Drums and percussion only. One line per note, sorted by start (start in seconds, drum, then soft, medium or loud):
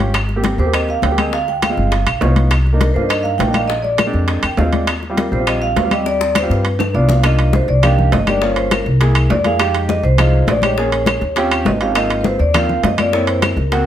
0.00 high conga medium
0.14 high bongo medium
0.14 high conga soft
0.14 high timbale medium
0.14 claves medium
0.29 high bongo soft
0.29 high conga soft
0.44 high bongo medium
0.44 high conga medium
0.44 high timbale medium
0.44 low timbale medium
0.59 high bongo soft
0.59 high conga soft
0.73 high bongo medium
0.73 high conga soft
0.73 high timbale medium
0.73 claves medium
0.88 high bongo soft
0.88 high conga soft
1.02 high bongo soft
1.02 low bongo medium
1.02 high conga medium
1.02 high timbale medium
1.02 low timbale medium
1.18 high conga medium
1.18 high timbale medium
1.18 claves medium
1.33 high bongo medium
1.48 high bongo soft
1.48 high conga soft
1.62 high bongo medium
1.62 high conga medium
1.62 high timbale medium
1.62 low timbale medium
1.62 claves medium
1.77 high bongo soft
1.77 high conga soft
1.92 high bongo medium
1.92 high conga soft
1.92 high timbale medium
2.07 high bongo soft
2.07 high conga soft
2.07 high timbale medium
2.07 claves medium
2.21 high bongo soft
2.21 low bongo medium
2.21 high conga soft
2.21 low timbale medium
2.36 high conga medium
2.36 high timbale medium
2.51 high bongo medium
2.51 high timbale medium
2.51 claves medium
2.66 high bongo soft
2.66 high conga soft
2.81 high bongo medium
2.81 high conga medium
2.81 high timbale medium
2.81 low timbale medium
2.96 high bongo soft
2.96 high conga soft
3.10 high bongo medium
3.10 high conga soft
3.10 high timbale medium
3.10 claves medium
3.25 high bongo soft
3.25 high conga soft
3.39 high bongo soft
3.39 low bongo medium
3.39 high conga medium
3.39 high timbale medium
3.39 low timbale medium
3.54 high conga medium
3.54 high timbale medium
3.54 claves medium
3.70 high bongo medium
3.70 high conga soft
3.84 high bongo soft
3.84 high conga soft
3.98 high bongo medium
3.98 high conga medium
3.98 high timbale medium
3.98 low timbale medium
3.98 claves medium
4.13 high bongo soft
4.13 high conga soft
4.28 high bongo medium
4.28 high conga soft
4.28 high timbale medium
4.43 high bongo soft
4.43 high conga soft
4.43 high timbale medium
4.43 claves medium
4.57 high bongo soft
4.57 low bongo medium
4.57 high conga soft
4.57 low timbale medium
4.73 high conga medium
4.73 high timbale medium
4.87 high bongo medium
4.87 high conga soft
4.87 high timbale medium
4.87 claves medium
5.03 high bongo soft
5.03 high conga soft
5.17 high bongo medium
5.17 high conga medium
5.17 high timbale medium
5.17 low timbale medium
5.33 high bongo soft
5.33 high conga soft
5.47 high bongo medium
5.47 high conga soft
5.47 high timbale medium
5.47 claves medium
5.62 high bongo soft
5.62 high conga soft
5.77 high bongo soft
5.77 low bongo medium
5.77 high conga medium
5.77 high timbale medium
5.77 low timbale medium
5.91 high conga medium
5.91 high timbale medium
5.91 claves medium
6.06 high bongo medium
6.06 high conga soft
6.21 high bongo medium
6.21 high conga soft
6.35 low bongo medium
6.35 high conga medium
6.35 high timbale medium
6.35 low timbale medium
6.35 claves medium
6.51 high bongo medium
6.51 high conga soft
6.65 high conga soft
6.65 high timbale medium
6.79 low bongo medium
6.79 high conga medium
6.79 high timbale medium
6.79 claves medium
7.08 low bongo medium
7.08 low conga medium
7.08 low timbale medium
7.23 high bongo medium
7.23 high conga soft
7.23 high timbale medium
7.23 claves medium
7.38 high bongo soft
7.38 high conga soft
7.38 high timbale medium
7.53 high bongo medium
7.53 high conga medium
7.53 low timbale medium
7.68 high bongo soft
7.68 high conga soft
7.83 high bongo medium
7.83 high conga soft
7.83 low conga medium
7.83 high timbale medium
7.83 claves medium
7.98 high conga soft
7.98 low conga medium
8.12 high bongo soft
8.12 low bongo medium
8.12 high conga medium
8.12 high timbale medium
8.12 low timbale medium
8.27 high bongo soft
8.27 high conga medium
8.27 high timbale medium
8.27 claves medium
8.42 high bongo medium
8.42 high conga soft
8.56 high bongo soft
8.56 high conga soft
8.56 high timbale medium
8.71 high bongo medium
8.71 high conga medium
8.71 high timbale medium
8.71 low timbale medium
8.71 claves medium
8.86 high bongo soft
8.86 high conga soft
9.01 high bongo medium
9.01 high conga soft
9.01 high timbale medium
9.15 high conga soft
9.15 high timbale medium
9.15 claves medium
9.30 high bongo soft
9.30 low bongo medium
9.30 high conga medium
9.30 low timbale medium
9.44 high bongo soft
9.44 high conga medium
9.44 high timbale medium
9.60 high bongo medium
9.60 high conga soft
9.60 high timbale medium
9.60 claves medium
9.75 high bongo soft
9.75 high conga soft
9.75 high timbale medium
9.89 high bongo medium
9.89 high conga medium
9.89 low timbale medium
10.04 high bongo soft
10.04 high conga soft
10.18 high bongo medium
10.18 high conga soft
10.18 low conga medium
10.18 high timbale loud
10.18 claves medium
10.33 high conga soft
10.47 high bongo soft
10.47 low bongo medium
10.47 high conga medium
10.47 high timbale medium
10.47 low timbale medium
10.62 high bongo soft
10.62 high conga medium
10.62 high timbale medium
10.62 claves medium
10.77 high bongo medium
10.77 high conga soft
10.92 high bongo soft
10.92 high conga soft
10.92 high timbale medium
11.06 high bongo medium
11.06 high conga medium
11.06 high timbale medium
11.06 low timbale medium
11.06 claves medium
11.21 high bongo soft
11.21 high conga soft
11.36 high bongo medium
11.36 high conga soft
11.36 high timbale medium
11.51 high conga soft
11.51 high timbale medium
11.51 claves medium
11.65 high bongo soft
11.65 low bongo medium
11.65 high conga medium
11.65 low timbale medium
11.81 high bongo soft
11.81 high timbale medium
11.95 high bongo medium
11.95 high conga soft
11.95 high timbale medium
11.95 claves medium
12.09 high bongo soft
12.09 high conga soft
12.09 high timbale medium
12.24 high bongo medium
12.24 high conga medium
12.24 low timbale medium
12.39 high bongo soft
12.39 high conga soft
12.54 high bongo medium
12.54 high conga soft
12.54 low conga medium
12.54 high timbale medium
12.54 claves medium
12.69 high conga soft
12.69 low conga medium
12.84 high bongo soft
12.84 low bongo medium
12.84 high conga medium
12.84 high timbale medium
12.84 low timbale medium
12.98 high bongo soft
12.98 high conga medium
12.98 high timbale medium
12.98 claves medium
13.13 high bongo medium
13.13 high conga soft
13.27 high bongo soft
13.27 high conga soft
13.27 high timbale medium
13.42 high bongo medium
13.42 high conga medium
13.42 high timbale medium
13.42 low timbale medium
13.42 claves medium
13.57 high bongo soft
13.57 high conga soft
13.72 high bongo medium
13.72 high conga soft
13.72 high timbale medium